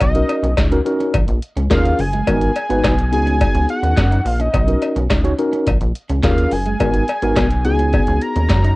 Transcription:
0.00 analog synth bass B1, clean electric guitar B3, analog synth lead D#5, kick, closed hi-hat, cowbell
0.15 tine electric piano C#4 D#4 F#4 A#4, closed hi-hat
0.29 muted clean electric guitar stroke, closed hi-hat, cowbell
0.43 analog synth bass B1, clean electric guitar C#4, closed hi-hat
0.57 analog synth bass C#2, clean electric guitar D#4, kick, snare, clap, closed hi-hat, cowbell
0.71 tine electric piano C#4 D#4 F#4 A#4, closed hi-hat
0.85 tine electric piano C#4 D#4 F#4 A#4, muted clean electric guitar stroke, closed hi-hat
1.00 clean electric guitar C#4, closed hi-hat
1.14 analog synth bass A#1, clean electric guitar A#3, kick, closed hi-hat, cowbell
1.28 analog synth bass A#1, muted clean electric guitar stroke, closed hi-hat
1.42 closed hi-hat
1.57 analog synth bass C#2, clean electric guitar C#4, closed hi-hat
1.70 analog synth bass D#2, clean electric guitar A#3, tine electric piano C#4 F4 G#4 A#4, analog synth lead F5, kick, snare, clap, closed hi-hat, cowbell
1.85 closed hi-hat
1.99 analog synth bass F#1, analog synth lead G#5, muted clean electric guitar stroke, open hi-hat
2.13 clean electric guitar G#3, closed hi-hat
2.27 analog synth bass G#1, clean electric guitar G#3, tine electric piano B3 D#4 F#4 A#4, kick, closed hi-hat, cowbell
2.41 closed hi-hat
2.56 muted clean electric guitar stroke, closed hi-hat, cowbell
2.70 analog synth bass G#1, tine electric piano B3 D#4 F#4 B4, clean electric guitar B3, closed hi-hat
2.84 analog synth bass B1, clean electric guitar D#4, kick, snare, clap, closed hi-hat, cowbell
2.98 closed hi-hat
3.12 analog synth bass C#2, tine electric piano B3 D#4 F#4 G#4, analog synth lead G#5, muted clean electric guitar stroke, closed hi-hat
3.26 clean electric guitar C#4, closed hi-hat
3.41 clean electric guitar B3, analog synth lead G#5, kick, closed hi-hat, cowbell
3.55 analog synth bass C#2, closed hi-hat
3.69 analog synth lead F#5, muted clean electric guitar stroke, closed hi-hat
3.83 analog synth bass D#2, clean electric guitar C#4, closed hi-hat
3.97 analog synth bass F#2, kick, snare, clap, closed hi-hat, cowbell
4.11 clean electric guitar D#4, closed hi-hat
4.25 analog synth bass A#1, analog synth lead F5, muted clean electric guitar stroke, open hi-hat
4.40 clean electric guitar C#4, analog synth lead D#5, closed hi-hat
4.54 analog synth bass B1, clean electric guitar B3, kick, closed hi-hat, cowbell
4.68 tine electric piano C#4 D#4 F#4 A#4, closed hi-hat
4.82 muted clean electric guitar stroke, closed hi-hat, cowbell
4.96 analog synth bass B1, clean electric guitar C#4, closed hi-hat
5.10 analog synth bass C#2, clean electric guitar D#4, kick, snare, clap, closed hi-hat, cowbell
5.24 tine electric piano C#4 D#4 F#4 C#5, closed hi-hat
5.39 tine electric piano C#4 D#4 F#4 A#4, muted clean electric guitar stroke, closed hi-hat
5.53 clean electric guitar C#4, closed hi-hat
5.67 analog synth bass A#1, clean electric guitar A#3, kick, closed hi-hat, cowbell
5.81 analog synth bass A#1, muted clean electric guitar stroke, closed hi-hat
5.95 closed hi-hat
6.10 analog synth bass C#2, clean electric guitar C#4, closed hi-hat
6.23 analog synth bass D#2, clean electric guitar A#3, tine electric piano C#4 F4 G#4 A#4, analog synth lead F5, kick, snare, clap, closed hi-hat, cowbell
6.38 closed hi-hat
6.51 analog synth bass F#1, analog synth lead G#5, muted clean electric guitar stroke, open hi-hat
6.66 clean electric guitar G#3, closed hi-hat
6.80 analog synth bass G#1, clean electric guitar G#3, tine electric piano B3 D#4 F#4 A#4, kick, closed hi-hat, cowbell
6.94 closed hi-hat
7.08 muted clean electric guitar stroke, closed hi-hat, cowbell
7.22 analog synth bass G#1, tine electric piano B3 D#4 F#4 A#4, clean electric guitar B3, closed hi-hat
7.36 analog synth bass B1, clean electric guitar D#4, kick, snare, clap, closed hi-hat, cowbell
7.51 closed hi-hat
7.65 analog synth bass C#2, tine electric piano B3 D#4 F#4 G#4, analog synth lead G#5, muted clean electric guitar stroke, closed hi-hat
7.79 clean electric guitar C#4, closed hi-hat
7.93 clean electric guitar B3, kick, closed hi-hat, cowbell
8.07 analog synth bass C#2, closed hi-hat
8.21 analog synth lead A#5, muted clean electric guitar stroke, closed hi-hat
8.36 analog synth bass D#2, clean electric guitar C#4, closed hi-hat
8.49 analog synth bass F#2, kick, snare, clap, closed hi-hat, cowbell
8.64 clean electric guitar D#4, closed hi-hat

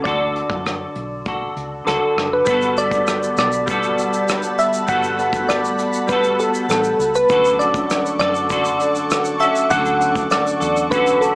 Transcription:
0.02 fingered electric bass D2, clean electric guitar D3 F#4, synth keys D5, kick, closed hi-hat
0.07 clean electric guitar A4
0.36 closed hi-hat
0.49 fingered electric bass F#2, kick
0.66 cross-stick, closed hi-hat
0.95 fingered electric bass B1, closed hi-hat
1.26 clean electric guitar F#4 A4, kick, closed hi-hat
1.56 fingered electric bass C#2, closed hi-hat
1.85 fingered electric bass C#2, clean electric guitar D3 F#4 A4, synth keys A4, cross-stick, closed hi-hat
2.16 fingered electric bass F#1, cross-stick, closed hi-hat
2.33 synth keys B4
2.45 fingered electric bass G1, clean electric guitar G3 B3 F#4, tine electric piano G3 B3 F#4 A4, ambient pad G3 F#5 A5 B5, synth keys B4, kick, closed hi-hat, shaker
2.50 clean electric guitar A4
2.61 shaker
2.76 tine electric piano G3 B3 F#4 A4, synth keys D5, closed hi-hat, shaker
2.91 tine electric piano G3 B3 F#4 A4, kick, shaker
3.07 cross-stick, closed hi-hat, shaker
3.23 shaker
3.37 fingered electric bass B1, synth keys D5, cross-stick, closed hi-hat, shaker
3.52 shaker
3.66 clean electric guitar G3 B3 F#4, kick, closed hi-hat, shaker
3.71 clean electric guitar A4
3.83 shaker
3.98 closed hi-hat, shaker
4.13 shaker
4.28 cross-stick, closed hi-hat, shaker
4.43 shaker
4.58 synth keys E5, closed hi-hat, shaker
4.73 shaker
4.87 fingered electric bass G1, clean electric guitar G3 B3 F#4, tine electric piano G3 B3 F#4 A4, synth keys F#5, kick, closed hi-hat, shaker
4.92 clean electric guitar A4
5.03 shaker
5.18 tine electric piano G3 B3 F#4 A4, closed hi-hat, shaker
5.32 tine electric piano G3 A3 F#4 A4, kick, shaker
5.40 tine electric piano B3
5.49 synth keys D5, cross-stick, closed hi-hat, shaker
5.64 shaker
5.78 fingered electric bass A1, closed hi-hat, shaker
5.93 shaker
6.07 clean electric guitar G3 B3, synth keys B4, kick, closed hi-hat, shaker
6.11 clean electric guitar F#4 A4
6.24 shaker
6.39 synth keys A4, closed hi-hat, shaker
6.54 shaker
6.69 fingered electric bass A1, synth keys A4, cross-stick, closed hi-hat, shaker
6.84 shaker
6.99 fingered electric bass C#2, closed hi-hat, shaker
7.15 synth keys B4, shaker
7.29 fingered electric bass D2, clean electric guitar D3 F#4 A4, tine electric piano F#3 C#4 D4 A4, ambient pad A4 F#5 C#6 D6, synth keys B4, kick, closed hi-hat, shaker
7.45 shaker
7.59 tine electric piano F#3 C#4 D4 F#4, synth keys D5, closed hi-hat, shaker
7.74 tine electric piano F#3 A3 D4 A4, kick, shaker
7.90 cross-stick, closed hi-hat, shaker
8.06 shaker
8.19 fingered electric bass F#2, clean electric guitar F#4 A4, synth keys D5, cross-stick, closed hi-hat, shaker
8.34 shaker
8.50 clean electric guitar D3 F#4 A4, kick, closed hi-hat, shaker
8.65 shaker
8.80 closed hi-hat, shaker
8.95 shaker
9.11 cross-stick, closed hi-hat, shaker
9.24 shaker
9.40 clean electric guitar A4, synth keys E5, closed hi-hat, shaker
9.42 clean electric guitar C#4 F#4, shaker
9.55 shaker
9.69 fingered electric bass D2, clean electric guitar D3 F#4 A4, tine electric piano F#3 C#4 D4 A4, synth keys F#5, kick, closed hi-hat, shaker
9.85 shaker
10.00 tine electric piano F#3 C#4 D4 A4, closed hi-hat, shaker
10.15 tine electric piano F#3 A3 D4 A4, kick, shaker
10.30 synth keys D5, cross-stick, closed hi-hat, shaker
10.46 shaker
10.60 fingered electric bass E2, clean electric guitar F#4 A4, closed hi-hat, shaker
10.77 shaker
10.90 clean electric guitar D3 C#4 F#4, synth keys B4, kick, closed hi-hat, shaker
10.95 clean electric guitar A4
11.07 shaker
11.21 synth keys A4, closed hi-hat, shaker

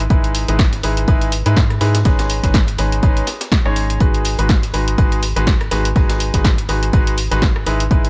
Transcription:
0.10 fm bass G#1, grand piano G#3 D#4 E4 G#4 B4, kick, closed hi-hat
0.24 closed hi-hat
0.35 closed hi-hat, open hi-hat
0.48 fm bass G#1, grand piano G#3 D#4 E4 G#4 B4, closed hi-hat
0.59 kick, snare, closed hi-hat
0.73 snare, closed hi-hat
0.83 fm bass G#1, grand piano G#3 D#4 E4 G#4 B4, closed hi-hat, open hi-hat
0.97 closed hi-hat
1.08 fm bass G#1, grand piano G#3 D#4 E4 G#4 B4, kick, closed hi-hat
1.21 closed hi-hat
1.32 closed hi-hat, open hi-hat
1.46 fm bass G#2, grand piano G#3 D#4 E4 G#4 B4, closed hi-hat
1.57 kick, snare, closed hi-hat
1.70 cross-stick, closed hi-hat
1.81 fm bass G#2, grand piano G#3 D#4 E4 G#4 B4, snare, closed hi-hat, open hi-hat
1.95 snare, closed hi-hat
2.05 fm bass G#1, grand piano G#3 C#4 D#4 G#4 B4, kick, snare, closed hi-hat
2.19 snare, closed hi-hat
2.30 closed hi-hat, open hi-hat
2.43 fm bass G#1, grand piano G#3 C#4 D#4 G#4 B4, kick, snare, closed hi-hat
2.54 kick, snare, closed hi-hat
2.68 closed hi-hat
2.78 fm bass G#1, grand piano G#3 C#4 D#4 G#4 B4, snare, closed hi-hat, open hi-hat
2.92 closed hi-hat
3.03 fm bass G#1, grand piano G#3 C#4 D#4 G#4 B4, kick, closed hi-hat
3.17 closed hi-hat
3.27 snare, closed hi-hat, open hi-hat
3.41 snare, closed hi-hat
3.52 kick, snare, closed hi-hat
3.65 fm bass G#1, grand piano G#3 C#4 D#4 G#4 C#5, cross-stick
3.76 closed hi-hat, open hi-hat
3.90 closed hi-hat
4.00 fm bass G#1, grand piano G#3 D#4 F#4 G#4 B4, kick, closed hi-hat
4.14 closed hi-hat
4.25 closed hi-hat, open hi-hat
4.39 fm bass G#1, grand piano G#3 D#4 F#4 G#4 B4, closed hi-hat
4.49 kick, snare, closed hi-hat
4.63 snare, closed hi-hat
4.74 fm bass G#1, grand piano G#3 D#4 F#4 G#4 B4, closed hi-hat, open hi-hat
4.88 closed hi-hat
4.98 fm bass G#1, grand piano G#3 D#4 F#4 G#4 B4, kick, closed hi-hat
5.12 closed hi-hat
5.23 closed hi-hat, open hi-hat
5.36 fm bass G#1, grand piano G#3 D#4 F#4 G#4 B4, closed hi-hat
5.47 kick, snare, closed hi-hat
5.61 cross-stick, closed hi-hat
5.71 fm bass G#1, grand piano G#3 D#4 F#4 G#4 B4, snare, closed hi-hat, open hi-hat
5.85 closed hi-hat
5.96 fm bass G#1, grand piano G#3 D#4 F#4 G#4 B4, kick, snare, closed hi-hat
6.10 snare, closed hi-hat
6.20 closed hi-hat, open hi-hat
6.34 fm bass G#1, grand piano G#3 D#4 F#4 G#4 B4, kick, snare, closed hi-hat
6.45 kick, snare, closed hi-hat
6.58 closed hi-hat
6.69 fm bass G#1, grand piano G#3 D#4 F#4 G#4 B4, snare, closed hi-hat, open hi-hat
6.83 closed hi-hat
6.93 grand piano G#3 D#4 F#4 G#4 B4, kick, closed hi-hat
7.07 closed hi-hat
7.18 closed hi-hat, open hi-hat
7.31 fm bass G#1, grand piano G#3 D#4 F#4 G#4 B4, snare, closed hi-hat
7.42 kick, snare, closed hi-hat
7.56 cross-stick
7.66 fm bass G#1, grand piano G#3 D#4 E4 G#4 B4, closed hi-hat, open hi-hat
7.80 closed hi-hat
7.91 grand piano G#3 D#4 E4 G#4 B4, kick, closed hi-hat
8.05 closed hi-hat

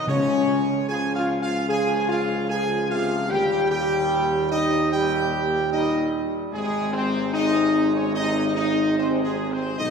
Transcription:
0.07 tuba C#2, timpani C#3, trombone section C#3 F3, french horn section C#4, trumpet section C#5
0.89 trombone section C#3 F3, french horn section G#4, trumpet section G#5
1.15 french horn section F4, trumpet section F5
1.42 french horn section F4, trumpet section F5
1.68 trombone section C#3 F3, french horn section G#4, trumpet section G#5
2.08 french horn section F4, trumpet section F5
2.49 trombone section C#3 F3, french horn section G#4, trumpet section G#5
2.90 trombone section C3, french horn section F4, trumpet section F5
3.28 tuba D#2, trombone section A#2 G3, french horn section G4, trumpet section G5
3.71 french horn section G4, trumpet section G5
4.52 french horn section D#4, trumpet section D#5
4.92 trombone section A#2 G3, french horn section G4, trumpet section G5
5.72 trombone section A#2 G3, french horn section D#4, trumpet section D#5
6.53 tuba G#1, trombone section C3 G#3, french horn section G#3, trumpet section G#4
6.93 french horn section C4, trumpet section C5
7.33 trombone section C3 G#3, french horn section D#4, trumpet section D#5
7.95 french horn section C#4, trumpet section C#5
8.15 trombone section C3 G#3, french horn section D#4, trumpet section D#5
8.56 french horn section D#4, trumpet section D#5
8.96 trombone section C3 G#3, french horn section C4, trumpet section C5
9.24 french horn section G#3, trumpet section G#4
9.52 french horn section C4, trumpet section C5
9.78 tuba B1, trombone section B2 F#3, french horn section D#4, trumpet section D#5

